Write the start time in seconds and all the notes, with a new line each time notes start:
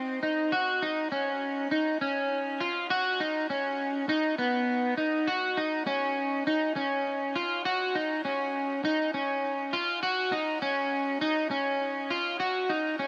Already playing: C4
0.23 D#4
0.52 F#4
0.82 D#4
1.12 C#4
1.71 D#4
2.01 C#4
2.60 F4
2.90 F#4
3.20 D#4
3.50 C#4
4.09 D#4
4.38 B3
4.97 D#4
5.27 F#4
5.57 D#4
5.87 C#4
6.47 D#4
6.76 C#4
7.36 F4
7.65 F#4
7.95 D#4
8.25 C#4
8.85 D#4
9.14 C#4
9.73 F4
10.03 F#4
10.32 D#4
10.62 C#4
11.21 D#4
11.51 C#4
12.10 F4
12.40 F#4
12.69 D#4
12.99 C#4